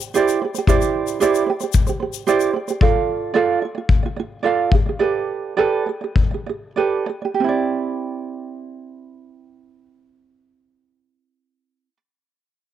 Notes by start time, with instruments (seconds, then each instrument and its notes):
Already playing: ukulele G4
0.00 shaker
0.14 ukulele E4 G4 C5 D5, shaker
0.28 shaker
0.42 ukulele G4 C5
0.55 ukulele G4 C5, shaker
0.67 ukulele E4 G4 C5 D5, kick, shaker
0.82 shaker
1.07 shaker
1.20 ukulele E4 G4 C5 D5, shaker
1.35 shaker
1.46 ukulele G4 C5
1.61 ukulele G4 C5, shaker
1.73 kick, shaker
1.87 ukulele G4 C5, shaker
2.00 ukulele G4 C5
2.13 shaker
2.27 ukulele E4 G4 C5 D5, shaker
2.40 shaker
2.54 ukulele G4 C5
2.68 ukulele G4 C5, shaker
2.81 ukulele F4 A4 D5 F5, kick
3.34 ukulele F4 A4 D5 F5
3.62 ukulele F4 D5
3.75 ukulele F4 D5
3.89 kick
4.03 ukulele F4 D5
4.16 ukulele F4 D5
4.43 ukulele F4 A4 D5 F5
4.72 ukulele G4, kick
4.86 ukulele G4 D5
4.99 ukulele G4 A4 B4 D5
5.57 ukulele G4 A4 B4 D5
5.86 ukulele G4 D5
6.01 ukulele G4 D5
6.16 kick
6.31 ukulele G4 D5
6.46 ukulele G4 D5
6.76 ukulele G4 A4 B4 D5
7.06 ukulele G4 D5
7.22 ukulele G4 D5
7.34 ukulele G4
7.40 ukulele C4
7.44 ukulele E4
7.49 ukulele D5